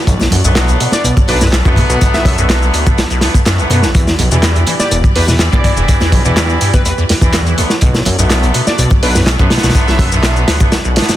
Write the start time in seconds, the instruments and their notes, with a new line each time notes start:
Already playing: string section B3 F#4 A4 C#5 D5
0.07 analog synth bass B1, acid bass B1, kick, closed hi-hat, shaker
0.20 snare, high conga, shaker
0.31 acid bass B1, analog synth bass F#2, closed hi-hat, open hi-hat, muted conga, low conga
0.44 analog synth bass B1, acid bass F#2, horn section D3 F#3 A3 B3, shaker
0.55 snare, clap, closed hi-hat, high conga, shaker
0.68 acid bass B1, closed hi-hat, shaker
0.80 acid bass B2, closed hi-hat, open hi-hat, muted conga
0.92 horn section D3 F#3 A3 D4, digital synth lead D5, snare, high conga, shaker
1.04 acid bass B1, analog synth bass B2, closed hi-hat, shaker
1.17 kick, muted conga, shaker
1.28 analog synth bass B1, acid bass B1, horn section D3 F#3 A3 D4, digital synth lead B4, open hi-hat
1.41 acid bass F#2, snare, high conga, shaker
1.53 snare, clap, closed hi-hat, shaker
1.65 analog synth bass F#2, horn section D3 F#3 A3 B3, acid bass D3, kick, muted conga, shaker
1.76 acid bass B2, string section B4, kick, closed hi-hat, open hi-hat, high conga
1.89 acid bass B1, analog synth bass B2, shaker
2.01 acid bass B1, kick, closed hi-hat, muted conga, shaker
2.14 acid bass B1, digital synth lead E5, snare, high conga, shaker
2.25 analog synth bass F#2, acid bass D3, kick, closed hi-hat, open hi-hat, low conga
2.38 analog synth bass B1, acid bass F#2, horn section D3 F#3 A3 B3, shaker
2.49 snare, clap, closed hi-hat, muted conga, high conga, shaker
2.62 shaker
2.74 acid bass D2, closed hi-hat, open hi-hat
2.86 acid bass B2, horn section D3 F#3 A3 B3, kick, muted conga, high conga, shaker
2.98 acid bass B1, snare, closed hi-hat, shaker
3.10 acid bass B1, closed hi-hat, shaker
3.21 acid bass C#2, horn section D3 F#3 A3 B3, snare, closed hi-hat, open hi-hat
3.34 kick, muted conga, high conga, shaker
3.46 acid bass F#2, snare, clap, closed hi-hat, shaker
3.59 acid bass B1, horn section D3 F#3 A3 B3, shaker
3.70 acid bass F#2, analog synth bass B2, horn section D3 F#3 A3 B3, closed hi-hat, open hi-hat, muted conga, high conga
3.83 acid bass A1, snare, shaker
3.95 analog synth bass E2, acid bass E2, string section E3 E4 G4 D5, kick, closed hi-hat, shaker
4.07 snare, high conga, shaker
4.18 analog synth bass B1, acid bass E2, closed hi-hat, open hi-hat, low conga
4.31 analog synth bass E2, acid bass B2, horn section E3 G3 B3 D4 E4, muted conga, shaker
4.43 snare, clap, closed hi-hat, high conga, shaker
4.56 acid bass E2, closed hi-hat, shaker
4.67 acid bass E3, closed hi-hat, open hi-hat, muted conga
4.79 horn section G3 B3 D4 G4, digital synth lead D5, snare, high conga, shaker
4.91 analog synth bass E1, acid bass E2, closed hi-hat, shaker
5.04 kick, shaker
5.15 acid bass E2, analog synth bass E2, horn section G3 B3 D4 G4, digital synth lead B4, open hi-hat, muted conga
5.28 acid bass B2, snare, high conga, shaker
5.39 snare, clap, closed hi-hat, shaker
5.52 analog synth bass B1, horn section E3 G3 B3 D4 E4, acid bass G3, digital synth lead D5, kick, muted conga, shaker
5.64 acid bass E3, digital synth lead D5, kick, closed hi-hat, open hi-hat, high conga
5.77 analog synth bass E1, acid bass E2, shaker
5.88 acid bass E2, kick, closed hi-hat, shaker
6.00 acid bass E2, snare, muted conga, high conga, shaker
6.12 analog synth bass B1, acid bass G3, kick, closed hi-hat, open hi-hat, low conga
6.25 analog synth bass E2, acid bass B2, horn section E3 G3 B3 D4 E4, shaker
6.36 snare, clap, closed hi-hat, muted conga, high conga, shaker
6.49 shaker
6.61 acid bass G2, closed hi-hat, open hi-hat
6.73 horn section E3 G3 B3 D4 E4, acid bass E3, digital synth lead B4, kick, high conga, shaker
6.85 acid bass E2, digital synth lead B4, closed hi-hat, muted conga, shaker
6.98 acid bass E2, shaker
7.09 acid bass E2, snare, closed hi-hat, open hi-hat
7.21 analog synth bass E2, horn section E3 G3 B3 D4 E4, kick, muted conga, high conga, shaker
7.33 acid bass E2, snare, clap, closed hi-hat, shaker
7.46 acid bass E3, shaker
7.58 acid bass B1, horn section D3 F#3 A3 B3, string section B3 F#4 A4 C#5 D5, closed hi-hat, open hi-hat, high conga
7.70 snare, muted conga, shaker
7.81 analog synth bass B1, acid bass B1, kick, closed hi-hat, shaker
7.94 snare, high conga, shaker
8.05 acid bass B1, analog synth bass F#2, closed hi-hat, open hi-hat, muted conga, low conga
8.19 analog synth bass B1, acid bass F#2, horn section D3 F#3 A3 B3, shaker
8.30 snare, clap, closed hi-hat, high conga, shaker
8.43 acid bass B1, closed hi-hat, shaker
8.54 acid bass B2, closed hi-hat, open hi-hat, muted conga
8.67 horn section D3 F#3 A3 D4, digital synth lead D5, snare, high conga, shaker
8.78 acid bass B1, analog synth bass B2, closed hi-hat, shaker
8.90 kick, muted conga, shaker
9.03 acid bass B1, analog synth bass B1, horn section D3 F#3 A3 D4, digital synth lead B4, open hi-hat
9.15 acid bass F#2, snare, high conga, shaker
9.27 snare, clap, closed hi-hat, shaker
9.39 analog synth bass F#2, acid bass D3, horn section D3 F#3 A3 B3, kick, muted conga, shaker
9.50 acid bass B2, snare, closed hi-hat, open hi-hat, high conga
9.58 snare, closed hi-hat
9.64 acid bass B1, analog synth bass B2, snare, closed hi-hat, shaker
9.69 snare, closed hi-hat
9.75 acid bass B1, kick, closed hi-hat, muted conga, shaker
9.87 acid bass B1, digital synth lead E5, snare, high conga, shaker
9.99 analog synth bass F#2, acid bass D3, kick, closed hi-hat, open hi-hat, low conga
10.12 analog synth bass B1, acid bass F#2, horn section D3 F#3 A3 B3, shaker
10.23 snare, clap, closed hi-hat, muted conga, high conga, shaker
10.36 shaker
10.48 acid bass D2, snare, closed hi-hat, open hi-hat
10.60 acid bass B2, horn section D3 F#3 A3 B3, kick, muted conga, high conga, shaker
10.72 acid bass B1, snare, closed hi-hat, shaker
10.85 acid bass B1, shaker
10.96 acid bass A1, horn section D3 F#3 A3 B3, snare, closed hi-hat, open hi-hat
11.02 snare, closed hi-hat
11.09 snare, closed hi-hat, muted conga, high conga, shaker